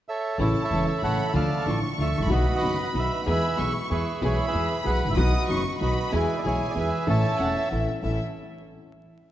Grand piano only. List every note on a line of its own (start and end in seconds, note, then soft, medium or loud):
0.39 0.52 A1 medium
0.39 0.52 A2 medium
0.39 0.52 C#3 medium
0.39 0.52 E3 soft
0.39 0.52 A3 soft
0.39 0.52 E4 medium
0.71 0.84 E1 soft
0.71 0.84 E2 soft
0.71 0.84 C#3 soft
0.71 0.84 E3 soft
0.71 0.84 A3 soft
0.71 0.84 E4 soft
1.03 1.16 A1 soft
1.03 1.16 A2 soft
1.03 1.16 C#3 soft
1.03 1.16 E3 soft
1.03 1.16 A3 soft
1.03 1.16 E4 soft
1.33 1.47 D2 medium
1.33 1.47 D3 medium
1.33 1.47 F3 soft
1.33 1.48 A3 medium
1.33 1.48 F4 medium
1.67 1.80 A1 soft
1.67 1.80 A2 soft
1.67 1.80 D3 soft
1.67 1.80 F3 soft
1.67 1.80 A3 soft
1.67 1.80 F4 soft
1.98 2.11 D2 soft
1.98 2.12 D3 soft
1.98 2.12 F3 soft
1.98 2.11 A3 soft
1.98 2.12 F4 soft
2.18 2.22 G#1 soft
2.18 2.26 A1 medium
2.26 2.30 A#1 medium
2.26 2.43 B1 medium
2.26 2.43 B2 medium
2.26 2.43 D#3 medium
2.26 2.43 F#3 soft
2.26 2.43 B3 soft
2.26 2.43 F#4 medium
2.61 2.75 F#1 soft
2.61 2.75 F#2 soft
2.61 2.75 D#3 soft
2.61 2.75 F#3 soft
2.61 2.75 B3 soft
2.61 2.75 F#4 soft
2.94 3.07 B1 soft
2.94 3.07 B2 soft
2.94 3.07 D#3 soft
2.94 3.07 F#3 soft
2.94 3.07 B3 soft
2.94 3.08 F#4 soft
3.26 3.39 E2 medium
3.26 3.39 E3 medium
3.26 3.39 G#3 soft
3.26 3.39 B3 medium
3.26 3.39 G#4 medium
3.57 3.71 B1 soft
3.57 3.71 B2 soft
3.57 3.71 E3 soft
3.57 3.71 G#3 soft
3.57 3.71 B3 soft
3.57 3.71 G#4 soft
3.90 4.03 E2 soft
3.90 4.03 E3 soft
3.90 4.03 G#3 soft
3.90 4.03 B3 soft
3.90 4.03 G#4 soft
4.21 4.35 B1 medium
4.21 4.35 B2 medium
4.21 4.35 E3 medium
4.21 4.35 G#3 medium
4.21 4.35 B3 medium
4.21 4.35 G#4 medium
4.52 4.67 E2 soft
4.52 4.67 E3 soft
4.52 4.67 G#3 soft
4.52 4.67 B3 soft
4.52 4.67 G#4 soft
4.84 4.98 B1 soft
4.84 4.98 B2 soft
4.84 4.98 E3 soft
4.84 4.98 G#3 soft
4.84 4.99 B3 soft
4.84 4.99 G#4 soft
5.05 5.09 G#1 soft
5.05 5.13 A1 soft
5.12 5.17 A#1 medium
5.12 5.30 D#3 medium
5.17 5.30 B1 medium
5.17 5.30 B2 medium
5.17 5.30 F#3 soft
5.17 5.30 B3 medium
5.17 5.30 F#4 medium
5.48 5.62 F#1 soft
5.48 5.62 F#2 soft
5.48 5.62 D#3 soft
5.48 5.62 F#3 soft
5.48 5.62 B3 soft
5.48 5.63 F#4 soft
5.80 5.94 B1 soft
5.80 5.94 B2 soft
5.80 5.94 D#3 soft
5.80 5.94 F#3 soft
5.80 5.94 B3 soft
5.80 5.94 F#4 soft
6.12 6.26 E2 medium
6.12 6.26 E3 medium
6.12 6.26 G#3 medium
6.12 6.26 B3 medium
6.12 6.26 G#4 medium
6.44 6.58 B1 soft
6.44 6.57 B2 soft
6.44 6.57 E3 soft
6.44 6.58 G#3 soft
6.44 6.58 B3 soft
6.44 6.58 G#4 soft
6.75 6.89 E2 soft
6.75 6.89 E3 soft
6.75 6.89 G#3 soft
6.75 6.89 B3 soft
6.75 6.89 G#4 soft
7.06 7.21 A1 medium
7.06 7.20 A2 medium
7.06 7.20 E3 medium
7.06 7.21 A3 soft
7.06 7.20 C#4 medium
7.06 7.21 A4 medium
7.39 7.53 E1 soft
7.39 7.53 E2 soft
7.39 7.52 E3 soft
7.39 7.53 A3 soft
7.39 7.53 C#4 soft
7.39 7.53 A4 soft
7.72 7.85 A1 soft
7.72 7.85 A2 soft
7.72 7.85 E3 soft
7.72 7.85 A3 soft
7.72 7.85 C#4 soft
7.72 7.85 A4 soft
8.03 8.17 A1 soft
8.03 8.17 C#4 soft
8.03 8.17 E4 soft
8.03 8.17 A4 soft